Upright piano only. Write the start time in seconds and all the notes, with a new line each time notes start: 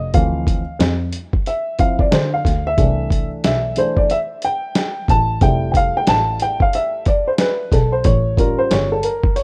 Already playing: F4 D#5
0.13 E3 F3 C4 F5
1.47 E5
1.78 F3 C4 E4 F5
2.00 D5
2.13 C5
2.34 F5
2.67 E5
2.77 E3 A3 D4
3.44 E5
3.77 E3 A3 D4 C5
3.97 D5
4.11 E5
4.45 G5
5.10 A5
5.41 G3 A3 E4 G5
5.72 G5
5.77 F5
5.97 G5
6.09 A5
6.42 G5
6.62 F5
6.75 E5
7.08 D5
7.28 C5
7.40 B4
7.73 A4
7.92 C5
8.05 C#5
8.38 G3 C#4 F4 A#4
8.59 C5
8.72 C#5
8.92 A4
9.04 A#4
9.36 C#5